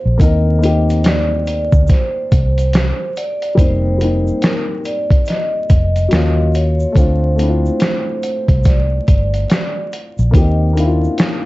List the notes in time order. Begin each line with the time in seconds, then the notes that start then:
Already playing: C5
0.05 A#1
0.18 D#2 A#3 C4 D#4 D#5, kick, closed hi-hat, shaker
0.24 A#4
0.59 A#3 C4, shaker
0.63 D#4 G4, closed hi-hat
0.90 closed hi-hat, shaker
1.04 D5, snare, closed hi-hat, shaker
1.47 closed hi-hat, shaker
1.72 D2, kick, shaker
1.87 C5, kick, closed hi-hat, shaker
1.92 snare
2.32 C2, kick, closed hi-hat, shaker
2.58 closed hi-hat, shaker
2.73 snare, closed hi-hat, shaker
3.16 D5, closed hi-hat, shaker
3.42 closed hi-hat
3.55 F1 G3 A#3 C4 C5, kick, closed hi-hat, shaker
3.61 D#4
3.98 G3 A#3 C4, closed hi-hat, shaker
4.04 D#4
4.27 shaker
4.42 A#4, snare, closed hi-hat, shaker
4.85 D5, closed hi-hat, shaker
5.10 kick, closed hi-hat
5.26 D#5, closed hi-hat, shaker
5.30 snare
5.70 F1, kick, closed hi-hat, shaker
5.96 closed hi-hat, shaker
6.08 F#3 A#3, closed hi-hat, shaker
6.13 D#2 C#4 F4, snare
6.54 C#5, closed hi-hat, shaker
6.80 shaker
6.92 A3 C4 D4 C5, kick
6.96 D2 F4, closed hi-hat, shaker
7.35 A3 C4 D4 C5, closed hi-hat, shaker
7.41 E4
7.48 F4
7.66 shaker
7.80 C5, snare, closed hi-hat, shaker
8.23 closed hi-hat, shaker
8.48 C2, kick, closed hi-hat
8.64 D5, kick, snare, closed hi-hat, shaker
9.08 G1, kick, closed hi-hat, shaker
9.34 closed hi-hat, shaker
9.50 snare, closed hi-hat, shaker
9.93 closed hi-hat, shaker
10.18 A#1, shaker
10.31 D#2 A#3 C4 D#4, kick, closed hi-hat
10.35 G4 D#5, shaker
10.73 A#3 D4, shaker
10.77 D#4 E4 F5, closed hi-hat
10.86 F4
11.04 shaker
11.18 snare, closed hi-hat, shaker